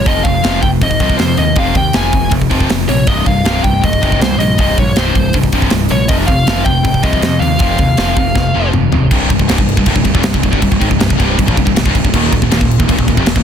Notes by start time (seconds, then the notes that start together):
0.05 F1 F2 C3 F3 D#5, kick, open hi-hat
0.23 F1 F2 C3 F5, kick, open hi-hat
0.43 F1 F2 C3 F3, snare, open hi-hat
0.61 F1 F2 C3 G5, kick, open hi-hat
0.81 G#1 F2 C3 D#5, kick, open hi-hat
0.91 kick
1.00 C2 F2 C3 F3, kick, open hi-hat
1.10 kick
1.18 F2 C3 C5, snare, open hi-hat
1.37 D#2 F2 C3 D#5, open hi-hat
1.55 F1 F2 C3 F3 F5, kick, open hi-hat
1.74 D#2 F2 C3 G5, kick, open hi-hat
1.93 F1 F2 C3 F3 G#5, snare, open hi-hat
2.13 F1 F2 C3, kick, open hi-hat
2.30 F1 F2 C3, kick, open hi-hat
2.42 kick
2.50 F1 F2 C3 F3, kick, open hi-hat
2.60 kick
2.69 F1 F2 C3, snare, open hi-hat
2.89 A#1 F2 C3 C#5, open hi-hat
3.07 C1 C2 G2 C3 D#5, kick, open hi-hat
3.26 C1 C2 G2 F5, kick, open hi-hat
3.45 C1 C2 G2 C3, snare, open hi-hat
3.64 C1 C2 G2 G5, kick, open hi-hat
3.81 D#1 C2 G2 D#5, kick, open hi-hat
3.93 kick
4.01 G1 C2 G2 C3, kick, open hi-hat
4.12 kick
4.20 C2 G2 C5, snare, open hi-hat
4.38 A#1 C2 G2 D#5, open hi-hat
4.58 C1 C2 G2 C3 D#5, kick, open hi-hat
4.78 A#1 C2 G2 C#5, kick, open hi-hat
4.96 C1 C2 G2 C3 C5, snare, open hi-hat
5.15 C1 C2 G2, kick, open hi-hat
5.33 C1 C2 G2, kick, open hi-hat
5.43 kick
5.52 C1 C2 G2 C3, kick, open hi-hat
5.62 kick
5.70 C1 C2 G2, snare, open hi-hat
5.89 A#1 C2 G2 C#5, open hi-hat
6.08 F1 F2 C3 F3 D#5, kick, open hi-hat
6.26 F1 F2 C3 F5, kick, open hi-hat
6.47 F1 F2 C3 F3, snare, open hi-hat
6.65 F1 F2 C3 G5, kick, open hi-hat
6.84 G#1 F2 C3, kick, open hi-hat
6.94 kick
7.03 C2 F2 C3 F3 D#5, kick, open hi-hat
7.13 kick
7.22 F2 C3, snare, open hi-hat
7.39 D#2 F2 C3 F5, open hi-hat
7.58 F1 F2 C3 F3, kick, open hi-hat
7.78 D#2 F2 C3, kick, open hi-hat
7.97 F1 F2 C3 F3, snare, open hi-hat
8.16 F1 F2 C3, kick, open hi-hat
8.35 F1 F2 C3, kick, snare
8.54 F1 F2 C3 F3
8.73 F1 F2 C3, mid tom
8.92 C#1 F2 C3, floor tom
9.11 C1 C2 G2 C3, kick, crash
9.30 C1 C2 G2, kick, crash
9.39 C1 C2 G2, kick
9.48 C#1 C#2 G#2, snare, crash
9.58 C1 C2 G2, kick
9.69 crash
9.77 C1 C2 G2, kick
9.86 C1 C2 G2, kick, crash
9.96 C1 C2 G2, kick
10.04 C1 C2 G2, kick, crash
10.14 D#1 D#2 A#2, kick
10.23 C1 C2 G2, snare, crash
10.34 C1 C2 G2, kick
10.43 C1 C2 G2, kick, crash
10.51 G1 G2 D3, kick
10.62 C1 C2 G2, kick, crash
10.72 C1 C2 G2, kick
10.80 G#1 G#2 D#3, kick, crash
10.90 C1 C2 G2, kick
10.99 C1 C2 G2, snare, crash
11.09 C1 C2 G2, kick
11.17 C1 C2 G2 C3, kick, crash
11.37 C1 C2 G2, kick, crash
11.46 A#1 A#2 F3, kick
11.56 C1 C2 G2, kick, crash
11.65 C1 C2 G2, kick
11.76 C1 C2 G2, snare, crash
11.85 C1 C2 G2, kick
11.95 C1 C2 G2, kick, crash
12.04 C1 C2 G2, kick
12.14 D#1 D#2 A#2 D#3, kick, crash
12.33 D#1 D#2 A#2, kick, crash
12.42 D#1 D#2 A#2, kick
12.51 D#1 D#2 A#2, snare, crash
12.60 D#1 D#2 A#2, kick
12.71 crash
12.79 D#1 D#2 A#2, kick
12.88 D#1 D#2 A#2, kick, crash
12.99 D#1 D#2 A#2, kick
13.08 D#1 D#2 A#2, kick, crash
13.17 F1 F2 C3, kick
13.26 D#1 D#2 A#2, snare, crash
13.36 D#1 D#2 A#2, kick